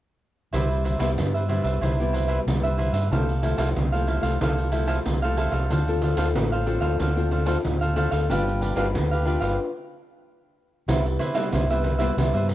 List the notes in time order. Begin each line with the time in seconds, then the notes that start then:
0.53 C2 C3 G3 E4 B4 C5 E5, pandeiro
0.71 pandeiro
0.84 E4 B4 C5 E5, pandeiro
0.99 C2 G3 B3 E4 B4 C5 E5, pandeiro
1.18 G2, pandeiro
1.34 B4 C5 E5, pandeiro
1.48 G3 B3 E4 B4 C5 E5, pandeiro
1.64 C2 B4 C5 E5, pandeiro
1.81 C2 C3 E4 B4 C5 E5, pandeiro
2.00 G3 B3 E4, pandeiro
2.13 E4 B4 C5 E5, pandeiro
2.28 E4 B4 C5 E5, pandeiro
2.47 C2 G2 G3 B3 E4, pandeiro
2.63 B4 C5 E5, pandeiro
2.78 E4 B4 C5 E5, pandeiro
2.93 G2 B4 C5 E5, pandeiro
3.11 C2 C3 F3 A3 E4 A4 C5 F5, pandeiro
3.29 pandeiro
3.42 F3 A3 E4 A4 C5 F5, pandeiro
3.58 C2 E4 A4 C5 F5, pandeiro
3.76 C2 C3, pandeiro
3.92 F3 A3 E4 A4 C5 F5, pandeiro
4.07 E4 A4 C5 F5, pandeiro
4.21 C2 F3 A3 E4 A4 C5 F5, pandeiro
4.41 C2 C3 F3 A3 E4 A4 C5 F5, pandeiro
4.58 pandeiro
4.72 F3 A3 E4 A4 C5 F5, pandeiro
4.87 E4 A4 C5 F5, pandeiro
5.06 C2 C3, pandeiro
5.22 F3 A3 E4 A4 C5 F5, pandeiro
5.37 E4 A4 C5 F5, pandeiro
5.52 C2 A4 C5 F5, pandeiro
5.70 D2 D3 C4 D4 F4 A4 C5 F5, pandeiro
5.88 C4 F4 A4, pandeiro
6.01 D4 A4 C5 F5, pandeiro
6.17 D2 C4 D4 F4 A4 C5 F5, pandeiro
6.35 A1 A2, pandeiro
6.52 A4 C5 F5, pandeiro
6.66 C4 D4 F4 A4 C5 F5, pandeiro
6.81 D2 A4 C5 F5, pandeiro
6.99 D2 D3 D4 A4 C5 F5, pandeiro
7.16 C4 F4 A4, pandeiro
7.31 D4 A4 C5 F5, pandeiro
7.46 C4 D4 F4 A4 C5 F5, pandeiro
7.65 D2 A2, pandeiro
7.81 A4 C5 F5, pandeiro
7.95 C4 D4 F4 A4 C5 F5, pandeiro
8.11 D2 A4 C5 F5, pandeiro
8.29 G1 G3 D4 F4 G4 B4 F5, pandeiro
8.47 pandeiro
8.61 D4 G4 B4 F5, pandeiro
8.75 G1 D4 F4 G4 B4 F5, pandeiro
8.94 D2 D3, pandeiro
9.11 G4 B4 F5, pandeiro
9.25 D4 F4 G4 B4 F5, pandeiro
9.40 G1 G4 B4 F5, pandeiro
10.88 C2 C3 G3 B3 E4 B4 C5 E5, pandeiro
11.05 muted cavaquinho stroke, pandeiro
11.19 E4 B4 C5 E5, pandeiro
11.34 G3 B3 E4 B4 C5 E5, pandeiro
11.52 C2 G2 E4 B4 C5 E5, pandeiro
11.70 G3 B3 E4 B4 C5 E5, pandeiro
11.84 pandeiro
11.99 G3 B3 E4 B4 C5 E5, pandeiro
12.17 C2 C3 G3 B3 E4 B4 C5 E5, pandeiro
12.34 G2 B4 C5 E5, pandeiro
12.48 muted cavaquinho stroke, pandeiro